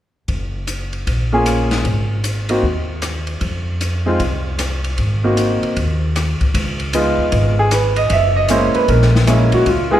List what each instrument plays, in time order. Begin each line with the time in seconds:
0.28 upright bass F#1, kick, ride
0.67 hi-hat pedal, ride
0.93 ride
1.07 upright bass A#1, kick, ride
1.32 grand piano A#3 C#4 F4 G#4
1.46 cross-stick, hi-hat pedal, ride
1.71 snare, ride
1.85 upright bass G#1, kick, ride
2.24 hi-hat pedal, ride
2.49 grand piano A#3 C4 D#4 F#4, ride
2.63 upright bass D#2, kick
3.02 cross-stick, hi-hat pedal, ride
3.27 ride
3.41 upright bass F2, kick, ride
3.81 hi-hat pedal, ride
4.06 grand piano G#3 C4 D#4 F4
4.20 upright bass C2, kick, ride
4.59 cross-stick, hi-hat pedal, ride
4.84 ride
4.98 upright bass G#1, kick, ride
5.24 grand piano A#3 C4 D#4 F#4
5.37 hi-hat pedal, ride
5.62 muted upright bass stroke, ride
5.76 upright bass D#2, kick, ride
6.16 cross-stick, hi-hat pedal, ride
6.41 muted upright bass stroke, kick, ride
6.54 upright bass C#2, kick, ride
6.80 ride
6.93 grand piano G#3 B3 D#4 F4, hi-hat pedal, ride
7.18 upright bass D2
7.32 upright bass G#1, kick, ride
7.59 grand piano G#4
7.71 grand piano B4, cross-stick, hi-hat pedal, ride
7.96 grand piano D#5, ride
8.10 upright bass F#1, grand piano E5, kick, ride
8.36 grand piano D#5
8.48 grand piano G#3 A#3 C#4 E4 C5, hi-hat pedal, ride
8.74 grand piano B4, muted upright bass stroke, ride
8.88 upright bass A#1, grand piano A#4, kick, ride
9.02 snare
9.15 snare
9.27 grand piano G#3 A#3 C#4 E4, cross-stick, hi-hat pedal, ride
9.52 upright bass D2, grand piano F#4, ride
9.66 upright bass C#2, grand piano F4, kick, ride
9.91 grand piano G#3 B3 D#4 F4 G#4